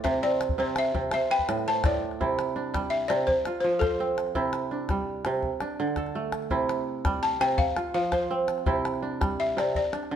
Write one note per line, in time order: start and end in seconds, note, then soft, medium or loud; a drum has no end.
0.00 0.10 B4 medium
0.00 0.69 C5 medium
0.00 0.79 D5 medium
0.00 0.12 E5 medium
0.04 0.57 C3 medium
0.04 calabash thump medium
0.04 calabash click medium
0.23 0.58 C4 medium
0.23 0.59 D5 medium
0.23 calabash click soft
0.31 calabash click soft
0.41 calabash click medium
0.49 calabash thump soft
0.58 0.93 C3 medium
0.58 1.36 C4 medium
0.58 0.77 C5 medium
0.68 calabash click soft
0.76 1.13 E5 medium
0.76 calabash click medium
0.85 calabash click soft
0.94 1.17 C3 medium
0.94 calabash thump medium
1.11 1.67 C5 medium
1.11 1.31 E5 medium
1.11 calabash click medium
1.21 calabash click soft
1.30 2.27 B4 medium
1.30 1.67 G5 medium
1.39 calabash thump medium
1.49 1.84 A2 medium
1.49 calabash click medium
1.58 calabash click soft
1.66 2.86 C5 medium
1.66 1.85 A5 medium
1.66 calabash click soft
1.84 2.25 A2 medium
1.84 2.01 D5 medium
1.84 2.96 D5 medium
1.84 calabash thump medium
1.84 calabash click medium
2.11 calabash click soft
2.21 3.09 C3 medium
2.21 3.53 E4 medium
2.21 calabash thump medium
2.39 calabash click medium
2.56 4.24 D4 medium
2.74 3.32 G3 medium
2.74 calabash thump medium
2.74 calabash click medium
2.90 3.09 E5 medium
3.08 3.32 C3 medium
3.08 3.27 D5 medium
3.08 calabash click medium
3.27 3.59 C5 medium
3.27 calabash thump medium
3.27 calabash click soft
3.45 4.41 F4 medium
3.45 calabash click medium
3.61 4.40 F3 medium
3.61 3.69 C5 medium
3.73 calabash click soft
3.79 4.18 A4 medium
3.79 5.01 C5 medium
3.79 calabash thump medium
3.79 calabash click soft
3.91 calabash click soft
4.00 5.80 C4 medium
4.18 calabash click medium
4.27 calabash click soft
4.35 5.25 C3 medium
4.35 5.92 E4 medium
4.35 calabash thump medium
4.53 calabash click medium
4.71 5.61 D4 medium
4.89 5.48 G3 medium
4.89 calabash thump medium
4.89 calabash click soft
5.25 5.48 C3 medium
5.25 calabash click medium
5.43 calabash thump medium
5.43 calabash click soft
5.61 7.29 D4 medium
5.61 calabash click soft
5.80 6.56 D3 medium
5.87 calabash click soft
5.96 7.29 A4 medium
5.96 calabash thump soft
5.96 calabash click soft
6.06 calabash click soft
6.15 8.15 A3 medium
6.32 calabash click medium
6.42 calabash click soft
6.50 7.39 C3 medium
6.50 7.83 E4 medium
6.50 calabash thump medium
6.69 calabash click medium
7.05 7.64 G3 medium
7.05 calabash thump medium
7.05 calabash click medium
7.23 7.40 A5 loud
7.41 7.64 C3 medium
7.41 7.60 G5 loud
7.41 calabash click medium
7.58 7.92 F5 medium
7.58 calabash thump medium
7.58 calabash click soft
7.77 8.73 F4 medium
7.77 calabash click medium
7.94 8.72 F3 medium
7.94 8.03 F5 medium
8.04 calabash click soft
8.12 8.50 C5 medium
8.12 9.32 C5 medium
8.12 calabash thump soft
8.12 calabash click soft
8.22 calabash click soft
8.31 10.11 C4 medium
8.48 calabash click medium
8.58 calabash click soft
8.66 9.56 C3 medium
8.66 10.16 E4 medium
8.66 calabash thump medium
8.66 calabash click soft
8.76 calabash click soft
8.85 calabash click medium
8.94 calabash click soft
9.02 9.92 D4 medium
9.21 9.80 G3 medium
9.21 calabash thump medium
9.21 calabash click medium
9.30 calabash click soft
9.40 9.58 E5 medium
9.49 calabash click soft
9.57 9.80 C3 medium
9.57 9.66 D5 medium
9.57 calabash click medium
9.75 10.16 D5 medium
9.75 calabash thump medium
9.75 calabash click soft
9.85 calabash click soft
9.93 10.16 D4 medium
9.93 calabash click medium
10.03 calabash click soft
10.11 10.16 D3 medium
10.11 calabash click soft